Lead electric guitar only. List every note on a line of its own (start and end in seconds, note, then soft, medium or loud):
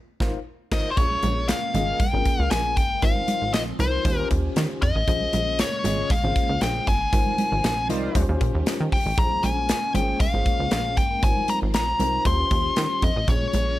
0.72 0.90 D#5 medium
0.91 0.97 C5 medium
0.98 1.48 C#5 loud
1.49 2.01 F5 loud
2.00 2.51 G5 loud
2.51 2.77 G#5 loud
2.77 3.03 G5 loud
3.03 3.53 F5 loud
3.54 3.61 D#5 medium
3.80 4.27 C5 medium
4.83 5.60 D#5 medium
5.60 6.12 C#5 loud
6.11 6.62 F5 loud
6.62 6.88 G5 loud
6.88 7.86 G#5 loud
8.93 9.19 G5 loud
9.18 9.44 A#5 loud
9.44 9.91 G#5 loud
9.96 10.20 G5 medium
10.21 10.71 F5 medium
10.72 10.97 F5 loud
10.98 11.24 G5 medium
11.24 11.50 G#5 loud
11.50 11.56 A#5 loud
11.75 12.22 A#5 loud
12.27 13.05 C6 loud
13.04 13.29 D#5 medium
13.29 13.79 C#5 loud